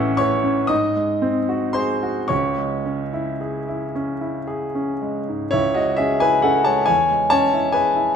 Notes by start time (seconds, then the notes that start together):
Already playing: A1 A2 E3 C#4 E5 F#5 E6 F#6
0.17 E3 C#5 C#6
0.44 C#4
0.67 G#2 D#5 D#6
0.96 G#3
1.22 C4
1.49 F#4
1.73 G#4 C5 C6
2.03 F#4
2.28 C#2 C#5 C#6
2.57 G#3
2.85 C#4
3.13 E4
3.41 G#4
3.68 E4
3.95 C#4
4.21 E4
4.47 G#4
4.75 C#4
5.01 G#3
5.29 G#2
5.51 C#2 E4 C#5
5.74 G#3 F#4 D#5
5.96 C#4 G#4 E5
6.20 E4 B4 G#5
6.42 C#4 A4 F#5
6.65 G#3 C#5 A5
6.86 E2 C#5 G#5
7.10 G#3
7.30 C#4 C#5 A5
7.53 E4
7.72 G#4 B4 G#5
7.96 E4